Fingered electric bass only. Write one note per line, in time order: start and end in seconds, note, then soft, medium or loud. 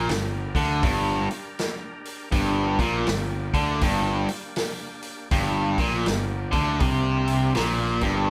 0.08 0.51 G1 medium
0.55 0.81 D2 medium
0.83 1.26 G1 medium
2.33 2.76 G1 medium
2.79 3.05 A#1 medium
3.07 3.51 G1 medium
3.54 3.80 D2 medium
3.82 4.25 G1 medium
5.32 5.75 G1 medium
5.79 6.05 A#1 medium
6.08 6.51 G1 medium
6.53 6.79 D2 loud
6.81 7.52 C2 medium
7.58 8.00 A#1 medium
8.02 8.28 G1 medium